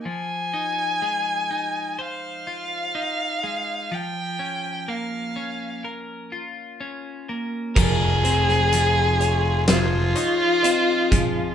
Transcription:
<<
  \new Staff \with { instrumentName = "Violin" } { \time 4/4 \key f \minor \tempo 4 = 62 aes''2 f''2 | g''4 f''4 r2 | aes'2 f'2 | }
  \new Staff \with { instrumentName = "Ambient pad" } { \time 4/4 \key f \minor r1 | r1 | <aes' ees'' f'' c'''>1 | }
  \new Staff \with { instrumentName = "Clean electric guitar" } { \time 4/4 \key f \minor r1 | r1 | bes'8 c''4 des''8 c''8 des''8 ees''8 aes'8 | }
  \new Staff \with { instrumentName = "Clean electric guitar" } { \time 4/4 \key f \minor f8 ees'8 aes8 ees'8 c''8 f'8 ees'8 aes8 | f8 des'8 bes8 des'8 bes'8 f'8 des'8 bes8 | f8 c'8 f4 aes'8 ees'8 c'8 f8 | }
  \new Staff \with { instrumentName = "Picked electric bass" } { \clef bass \time 4/4 \key f \minor r1 | r1 | f,,2 f,,8 r4. | }
  \new DrumStaff \with { instrumentName = "Drums" } \drummode { \time 4/4 r4 r4 r4 r4 | r4 r4 r4 r4 | <cymc bd>8 hh16 sn16 hh8 hh8 <hh sn>8 hh8 hh8 <hh bd>8 | }
>>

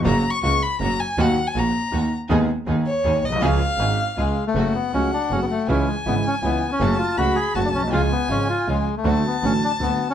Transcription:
<<
  \new Staff \with { instrumentName = "Violin" } { \time 3/4 \key cis \mixolydian \tempo 4 = 160 \tuplet 3/2 { ais''4 cis'''8 } cis'''8 b''8 ais''8 gis''8 | \tuplet 3/2 { fis''4 gis''8 } ais''4. r8 | r4. cis''4 dis''8 | eis''2~ eis''8 r8 |
\key fis \minor fis''2. | gis''2. | a''4 b''4 a''4 | gis''2~ gis''8 r8 |
a''2. | }
  \new Staff \with { instrumentName = "Bandoneon" } { \time 3/4 \key cis \mixolydian r2. | r2. | r2. | r2 gis8. a16~ |
\key fis \minor a8 b8 cis'8 d'8 cis'16 b16 a8 | cis'8 gis8 b8 cis'8 b8. cis'16~ | cis'8 eis'8 fis'8 gis'8 fis'16 d'16 cis'8 | eis'8 b8 cis'8 eis'8 gis8. a16~ |
a8 b8 cis'8 d'8 b8. cis'16 | }
  \new Staff \with { instrumentName = "String section" } { \time 3/4 \key cis \mixolydian <ais cis' fis'>8 r8 <ais cis' fis'>8 r8 <ais cis' fis'>8 r8 | <ais dis' fis'>8 r8 <ais dis' fis'>8 r8 <ais dis' fis'>8 r8 | <b dis' gis'>8 r8 <b dis' gis'>8 r8 <b dis' gis'>8 r8 | <cis' eis' gis'>8 r8 <cis' eis' gis'>8 r8 <cis' eis' gis'>8 r8 |
\key fis \minor <a cis' fis'>8 r8 <a cis' fis'>8 r8 <a cis' fis'>8 r8 | <gis cis' e'>8 r8 <gis cis' e'>8 r8 <gis cis' e'>8 r8 | <a cis' fis'>8 r8 <a cis' fis'>8 r8 <a cis' fis'>8 r8 | <gis cis' eis'>8 r8 <gis cis' eis'>8 r8 <gis cis' eis'>8 r8 |
<a d' fis'>8 r8 <a d' fis'>8 r8 <a d' fis'>8 r8 | }
  \new Staff \with { instrumentName = "Grand piano" } { \clef bass \time 3/4 \key cis \mixolydian <fis, cis fis ais fis'>8 r8 <cis, cis>8 r8 <fis, fis>8 r8 | <dis, dis fis ais fis'>8 r8 <ais,, ais,>8 r8 <dis, dis>8 r8 | <dis, dis gis b gis'>8 r8 <dis, dis>8 r8 <dis, dis>8 r32 ais,,32 b,,32 bis,,32 | <cis, cis eis gis cis' gis'>8 r8 <gis,, gis,>8 r8 <cis, cis>8 r8 |
\key fis \minor <fis, cis fis a fis'>8 r8 <cis, cis fis a fis'>8 r8 <fis, cis fis a fis'>8 r8 | <cis, cis e gis e'>8 r8 <gis,, gis, cis e gis e'>8 r8 <cis, cis e gis e'>8 r8 | <fis, cis fis a fis'>8 r8 <cis, cis fis a fis'>8 r8 <fis, cis fis a fis'>8 r32 ais,,32 b,,32 bis,,32 | <cis, cis eis gis eis'>8 r8 <gis,, gis, cis eis gis eis'>8 r8 <cis, cis eis gis eis'>8 r8 |
<d, d fis a fis'>8 r8 <a,, a, d fis a fis'>8 r8 <d, d fis a fis'>8 r8 | }
  \new Staff \with { instrumentName = "Double bass" } { \clef bass \time 3/4 \key cis \mixolydian fis,,8 r8 cis,8 r8 fis,,8 r8 | dis,8 r8 ais,,8 r8 dis,8 r8 | dis,8 r8 dis,8 r8 dis,8 b,,8 | cis,8 r8 gis,,8 r8 cis,8 r8 |
\key fis \minor fis,,8 r8 cis,8 r8 fis,,8 r8 | cis,8 r8 gis,,8 r8 cis,8 r8 | fis,,8 r8 cis,8 r8 fis,,8 b,,8 | cis,8 r8 gis,,8 r8 cis,8 r8 |
d,8 r8 a,,8 r8 d,8 r8 | }
>>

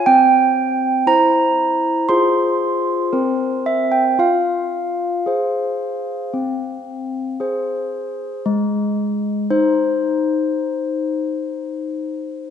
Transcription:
\new Staff \with { instrumentName = "Handbells" } { \time 4/4 \key f \minor \tempo 4 = 58 << { g''4 bes''4 c'''4. e''16 g''16 | f''2.~ f''8 r8 | \key aes \major r1 | } \\ { c'4 <e' c''>4 <f' aes' c''>4 <c' bes' c''>4 | f'4 <aes' c''>4 c'4 <aes' c''>4 | aes4 <ees' c''>2. | } >> }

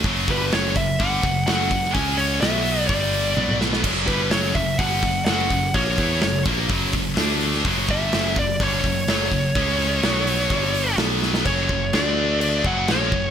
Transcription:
<<
  \new Staff \with { instrumentName = "Lead electric guitar" } { \time 4/4 \tempo 4 = 126 r8 b'8 cis''8 e''8 fis''4 fis''4 | gis''8 cis''8 e''4 d''4. r8 | r8 b'8 cis''8 e''8 fis''4 fis''4 | cis''4. r2 r8 |
r8 e''4 d''8 cis''2~ | cis''2. r4 | cis''4 d''4 d''8 fis''8 cis''4 | }
  \new Staff \with { instrumentName = "Distorted electric guitar" } { \clef bass \time 4/4 <fis, cis fis>8 <g, d g>8 <fis, cis fis>8 <fis, cis>8 <g, d g>8 <fis, cis>8 <fis, cis fis>8 <fis, cis>8 | <cis gis cis'>4 <b, fis b>4 <g, d g>4 <b, fis b>4 | <fis, cis fis>8 <g, d g>8 <fis, cis fis>8 <fis, cis>8 <g, d g>8 <fis, cis>8 <fis, cis fis>8 <fis, cis>8 | <ais, eis ais>8 <e b e'>8 <fis, cis>8 <ais, eis ais>8 <fis, cis fis>8 <fis, cis>8 <d a d'>4 |
<fis, cis fis>8 <g, d g>8 <fis, cis fis>8 <fis, cis>8 <g, d g>8 <fis, cis>8 <fis, cis fis>8 <fis, cis>8 | <cis gis cis'>4 <b, fis b>4 <g, d g>4 <b, fis b>4 | <fis, cis fis>8 <fis, cis>8 <d a d'>4. <fis, cis fis>8 <ais, eis ais>8 <fis, cis>8 | }
  \new Staff \with { instrumentName = "Picked electric bass" } { \clef bass \time 4/4 fis,,8 g,,8 fis,,8 fis,,8 g,,8 fis,,8 fis,,8 fis,,8 | cis,4 b,,4 g,,4 b,,4 | fis,,8 g,,8 fis,,8 fis,,8 g,,8 fis,,8 fis,,8 fis,,8 | ais,,8 e,8 fis,,8 ais,,8 fis,,8 fis,,8 d,4 |
fis,,8 g,,8 fis,,8 fis,,8 g,,8 fis,,8 fis,,8 fis,,8 | cis,4 b,,4 g,,4 b,,4 | fis,,8 fis,,8 d,4. fis,,8 ais,,8 fis,,8 | }
  \new DrumStaff \with { instrumentName = "Drums" } \drummode { \time 4/4 <hho bd>8 <hho bd>8 <hho sn>8 <hho bd>8 <hho bd>8 <hho bd>8 <hho sn>8 <hho bd>16 sn16 | <hho bd>8 hho8 <hho sn>8 hho8 <hho bd>8 hho8 tommh16 toml16 sn16 sn16 | <cymc bd>8 <hho bd>8 <hho sn>8 <hho bd>8 <hho bd>8 <hho bd>8 <hho sn>8 <hho bd>8 | <hho bd>8 <hho bd>8 <hho sn>8 <hho bd>8 <hho bd>8 <hho bd>8 <hho sn>8 hho16 sn16 |
<hho bd>8 <bd sn>8 <hho sn>8 <hho bd>8 <hho bd>8 <hho bd>8 <hho sn>8 <hho bd>8 | <hho bd>8 <hho sn>8 <hho sn>8 hho8 <hho bd>8 hho8 <hho sn>8 sn16 sn16 | <cymc bd>8 bd8 <cymc sn>4 cymc8 bd8 <cymc sn>8 bd8 | }
>>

